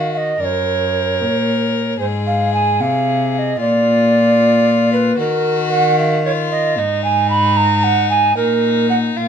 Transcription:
0.00 0.37 D#3 medium
0.00 0.37 F#4 medium
0.00 0.13 F5 loud
0.13 0.18 F5 medium
0.17 0.42 D#5 loud
0.40 1.22 F#2 medium
0.40 1.98 A#4 medium
0.40 0.46 D5 loud
0.45 1.99 C#5 loud
1.20 1.99 A#2 medium
1.99 2.81 G#2 medium
1.99 3.57 G#4 medium
1.99 2.06 C5 medium
2.27 2.53 F5 medium
2.54 2.82 G#5 loud
2.80 3.59 C3 medium
2.80 3.34 F5 loud
3.34 3.40 F5 medium
3.39 3.60 D#5 medium
3.59 5.16 A#2 medium
3.59 5.16 F4 medium
3.59 4.90 D5 loud
4.93 5.19 B4 medium
5.18 6.79 D#3 medium
5.18 6.21 F#4 medium
5.18 5.71 A#4 loud
5.71 5.98 F#5 loud
5.99 6.25 F5 loud
6.26 6.80 F4 medium
6.26 6.32 C#5 loud
6.51 6.77 D#5 loud
6.78 8.37 G#2 medium
6.78 8.36 D#4 medium
6.78 7.04 D#5 loud
7.04 7.29 G#5 loud
7.30 7.58 B5 loud
7.57 7.85 A#5 loud
7.84 8.09 F#5 loud
8.10 8.36 G#5 loud
8.37 9.13 A#2 medium
8.37 9.19 D#4 medium
8.37 8.89 A#4 loud
8.90 8.96 F#5 loud
9.16 9.28 A#2 medium
9.16 9.28 F4 medium
9.16 9.28 F5 medium

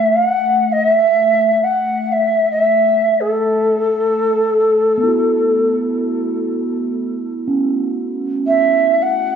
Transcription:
0.00 7.50 A3 medium
0.00 0.18 E5 medium
0.16 0.74 F#5 medium
0.72 0.85 D#5 medium
0.85 1.65 E5 medium
1.64 2.14 F#5 medium
2.12 2.51 E5 medium
2.51 3.22 E5 medium
3.21 5.76 A4 medium
4.97 7.72 B3 soft
5.03 7.75 E4 soft
5.03 7.77 F#4 soft
7.48 9.36 C#4 medium
8.47 9.04 E5 medium
9.02 9.36 F#5 loud

